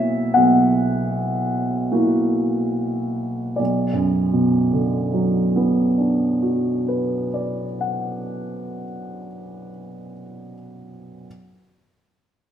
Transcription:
0.00 0.29 B1 soft
0.00 0.32 B2 soft
0.00 0.32 A#3 soft
0.00 0.32 E4 soft
0.00 0.32 F#4 soft
0.00 0.34 E5 medium
0.34 3.55 B1 soft
0.34 3.55 B2 soft
0.34 1.90 F#5 soft
1.92 3.55 A#3 soft
1.92 3.55 E4 soft
1.92 3.55 F#4 soft
3.56 7.29 B1 soft
3.56 7.26 D5 soft
3.93 7.64 F#2 soft
4.33 8.03 B2 soft
4.72 8.43 D3 soft
5.13 8.84 F#3 soft
5.56 9.26 B3 soft
5.98 9.68 D4 soft
6.42 10.13 F#4 soft
6.88 10.54 B4 soft
7.34 10.54 D5 soft
7.81 10.54 F#5 soft

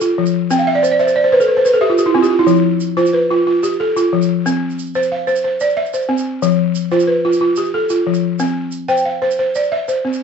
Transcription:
0.00 0.51 F4 medium
0.00 0.17 G4 medium
0.00 0.17 A4 medium
0.00 shaker medium
0.18 0.51 F3 medium
0.26 shaker medium
0.51 0.83 C4 medium
0.51 0.66 G5 medium
0.51 shaker medium
0.59 0.74 F5 medium
0.59 shaker soft
0.67 0.82 E5 medium
0.75 0.90 D5 medium
0.83 0.98 C5 medium
0.83 shaker medium
0.91 1.07 D5 medium
0.99 1.06 C5 medium
0.99 1.15 E5 medium
0.99 shaker soft
1.07 1.23 C5 medium
1.07 shaker soft
1.16 1.31 D5 medium
1.24 1.31 C5 medium
1.32 1.47 B4 medium
1.32 1.56 C5 medium
1.40 1.56 A4 medium
1.40 shaker medium
1.48 1.64 B4 medium
1.57 1.72 C5 medium
1.65 1.81 B4 medium
1.65 shaker medium
1.74 1.89 A4 medium
1.81 1.97 G4 medium
1.81 2.14 E5 medium
1.90 2.05 F4 medium
1.98 2.14 G4 medium
1.98 shaker medium
2.06 2.22 E4 medium
2.15 2.48 C4 medium
2.15 2.29 F4 medium
2.22 2.38 G4 medium
2.22 shaker soft
2.31 2.46 F4 medium
2.39 2.55 E4 medium
2.47 2.80 F3 medium
2.47 shaker medium
2.55 shaker soft
2.80 shaker medium
2.97 3.30 F4 medium
2.97 3.46 C5 medium
2.97 shaker soft
3.06 shaker soft
3.13 3.63 B4 medium
3.31 3.46 F4 medium
3.47 3.95 F4 medium
3.63 4.12 G4 medium
3.63 shaker medium
3.72 shaker soft
3.80 4.12 A4 medium
3.96 4.45 F4 medium
3.96 shaker medium
4.13 4.45 F3 medium
4.22 shaker medium
4.46 4.78 C4 medium
4.46 shaker medium
4.70 shaker soft
4.79 shaker medium
4.86 shaker soft
4.95 5.26 C5 medium
4.95 shaker soft
5.03 shaker soft
5.12 5.61 F5 medium
5.27 5.43 C5 medium
5.27 shaker soft
5.36 shaker medium
5.44 5.92 C5 medium
5.60 6.10 D5 medium
5.60 shaker medium
5.70 shaker soft
5.77 6.10 E5 medium
5.86 shaker soft
5.94 6.43 C5 medium
5.94 shaker medium
6.02 shaker soft
6.09 6.42 C4 medium
6.18 shaker soft
6.42 6.75 F3 medium
6.42 shaker medium
6.51 shaker soft
6.75 shaker medium
6.91 7.24 F4 medium
6.91 7.41 C5 medium
6.91 shaker soft
7.00 shaker soft
7.07 7.57 B4 medium
7.25 7.40 F4 medium
7.33 shaker soft
7.41 7.89 F4 medium
7.56 8.07 G4 medium
7.56 shaker medium
7.65 shaker soft
7.74 8.07 A4 medium
7.89 8.40 F4 medium
7.89 shaker medium
8.07 8.40 F3 medium
8.14 shaker soft
8.39 8.73 C4 medium
8.39 shaker medium
8.47 shaker soft
8.72 shaker medium
8.88 9.21 C5 medium
8.88 9.38 G5 medium
8.88 shaker soft
8.97 shaker soft
9.05 9.55 F5 medium
9.22 9.38 C5 medium
9.31 shaker medium
9.39 9.87 C5 medium
9.55 10.05 D5 medium
9.55 shaker medium
9.63 shaker soft
9.72 10.05 E5 medium
9.88 10.23 C5 medium
9.88 shaker medium
10.05 10.23 C4 medium
10.13 shaker soft

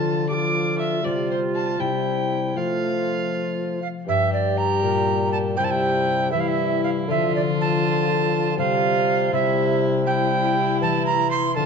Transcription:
0.00 1.05 D3 medium
0.00 1.07 D3 soft
0.00 0.26 F3 medium
0.00 0.25 F4 medium
0.00 0.27 F4 soft
0.00 0.28 F5 soft
0.00 0.28 A5 medium
0.28 1.05 F3 medium
0.28 1.02 F4 soft
0.28 0.35 G4 medium
0.28 1.82 F5 soft
0.28 0.79 D6 medium
0.34 1.03 F4 medium
0.79 1.06 E5 medium
1.03 1.78 C3 medium
1.03 1.79 C3 soft
1.03 1.79 G3 medium
1.03 1.81 F4 soft
1.03 1.82 F4 medium
1.03 1.77 C5 soft
1.03 1.30 D5 medium
1.31 1.39 C5 medium
1.55 1.82 A5 medium
1.78 2.54 C3 medium
1.78 2.58 C3 soft
1.78 2.54 G3 medium
1.78 2.57 E4 soft
1.78 2.58 E4 medium
1.78 2.54 C5 soft
1.78 2.58 G5 medium
2.52 3.80 F3 medium
2.52 4.10 F3 soft
2.52 4.08 A3 soft
2.52 3.80 A3 medium
2.52 4.09 F4 soft
2.52 4.09 C5 soft
2.57 3.81 F4 medium
2.57 3.83 F5 medium
3.82 3.88 F5 medium
4.06 4.79 G2 medium
4.06 5.61 G2 soft
4.06 5.55 G3 medium
4.06 5.55 G4 medium
4.06 4.32 E5 medium
4.33 4.59 D5 medium
4.58 5.32 A#5 loud
4.83 5.59 A#2 medium
4.83 5.61 A#2 medium
4.83 5.61 D4 medium
4.83 5.62 A#4 medium
5.32 5.38 A5 medium
5.57 6.33 C3 medium
5.57 7.11 C3 medium
5.57 6.32 G3 medium
5.57 6.32 E4 medium
5.57 5.66 G5 medium
5.64 5.72 A5 medium
5.71 6.31 G5 medium
6.32 7.07 E3 medium
6.32 7.11 E3 medium
6.32 7.11 G3 medium
6.32 7.11 E4 medium
6.32 7.11 C5 medium
6.32 6.42 E5 medium
6.40 6.49 F5 medium
6.48 6.83 E5 medium
6.84 6.90 F5 medium
7.08 8.59 D3 medium
7.08 8.60 D3 medium
7.08 8.57 F3 medium
7.08 8.57 F4 medium
7.08 7.34 E5 medium
7.36 7.42 D5 medium
7.61 8.57 A5 loud
7.85 8.58 F4 medium
7.85 8.61 A4 medium
8.57 9.32 C3 medium
8.57 9.31 C3 medium
8.57 9.31 G3 medium
8.57 9.35 F4 medium
8.57 9.35 F4 soft
8.57 10.07 C5 soft
8.57 9.32 F5 loud
9.32 11.59 C3 medium
9.32 10.52 C3 medium
9.32 10.06 G3 medium
9.32 10.07 E4 medium
9.32 9.82 E5 medium
10.06 11.26 G3 medium
10.06 11.54 E4 medium
10.06 11.59 E4 medium
10.06 11.59 C5 medium
10.06 10.78 G5 loud
10.81 11.57 E3 medium
10.81 11.59 E3 medium
10.81 11.05 A5 loud
11.06 11.30 A#5 loud
11.31 11.55 C6 loud
11.55 11.66 D3 medium
11.55 11.66 F3 medium
11.55 11.66 F4 medium
11.55 11.66 A5 loud

